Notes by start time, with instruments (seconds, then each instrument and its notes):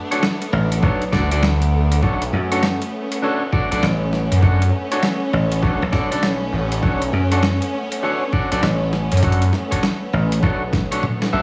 Already playing: string section A3 B3 D4
0.11 clean electric guitar D4 F#4 A4 C#5, closed hi-hat
0.23 snare
0.42 closed hi-hat
0.53 slap bass A1
0.72 closed hi-hat
0.83 slap bass B1, clean electric guitar D4 F#4 A4 C#5, kick
1.02 closed hi-hat
1.12 analog synth bass D2, clean electric guitar D4 F#4 A4 D5, kick, snare
1.31 clean electric guitar D4 F#4 A4 D5, closed hi-hat
1.43 snare
1.62 closed hi-hat
1.92 closed hi-hat
2.03 analog synth bass B1, string section C#4, clean electric guitar D4 F#4 A4 C#5, kick
2.22 closed hi-hat
2.33 slap bass F#2
2.52 clean electric guitar D4 F#4 A4 C#5, closed hi-hat
2.63 snare
2.82 closed hi-hat
3.12 closed hi-hat
3.22 clean electric guitar D4 F#4 A4 C#5
3.52 clean electric guitar D4 F#4 A4 D5, kick
3.71 analog synth bass B1, clean electric guitar D4 F#4 A4 D5, closed hi-hat
3.83 slap bass A1, snare
4.13 snare
4.32 analog synth bass F#2, closed hi-hat
4.42 clean electric guitar D4 F#4 A4 C#5, kick
4.62 closed hi-hat
4.92 clean electric guitar D4 F#4 A4 C#5, closed hi-hat
5.03 snare
5.33 slap bass A1
5.52 closed hi-hat
5.62 analog synth bass B1, clean electric guitar D4 F#4 A4 C#5, kick
5.82 slap bass B1
5.92 slap bass B1, clean electric guitar D4 F#4 A4 D5, kick, snare
6.11 clean electric guitar D4 F#4 A4 D5, closed hi-hat
6.23 snare
6.53 analog synth bass A1
6.72 closed hi-hat
6.82 analog synth bass B1, clean electric guitar D4 F#4 A4 C#5, kick
7.02 closed hi-hat
7.13 slap bass F#2
7.32 clean electric guitar D4 F#4 A4 C#5, closed hi-hat
7.43 snare
7.62 closed hi-hat
7.92 closed hi-hat
8.03 clean electric guitar D4 F#4 A4 C#5
8.33 clean electric guitar D4 F#4 A4 D5, kick
8.52 analog synth bass B1, clean electric guitar D4 F#4 A4 D5, closed hi-hat
8.63 slap bass A1, snare
8.93 snare
9.12 analog synth bass F#2, closed hi-hat
9.17 closed hi-hat
9.22 clean electric guitar D4 F#4 A4 C#5, kick, closed hi-hat
9.32 closed hi-hat
9.42 closed hi-hat
9.53 snare
9.71 clean electric guitar D4 F#4 A4 C#5, kick, closed hi-hat
9.83 snare
10.13 slap bass A1
10.32 closed hi-hat
10.43 slap bass B1, clean electric guitar D4 F#4 A4 C#5, kick
10.73 kick, snare
10.92 clean electric guitar D4 F#4 A4 C#5, closed hi-hat
11.03 mid tom
11.22 snare
11.33 analog synth bass B1, clean electric guitar D4 F#4 A4 E5